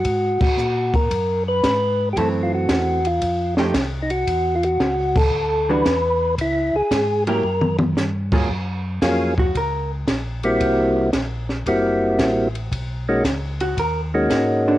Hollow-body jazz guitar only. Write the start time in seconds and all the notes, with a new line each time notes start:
2.17 E3 A3 C4
3.58 F3 A3 D#4 G4
5.69 E3 G3 D4 F#4
7.27 F#3 A#3 E4 G4
8.32 F#3 A#3 F4 G#4
9.39 F#4
9.57 A#4
13.61 F#4
13.80 A#4
14.68 D3 D4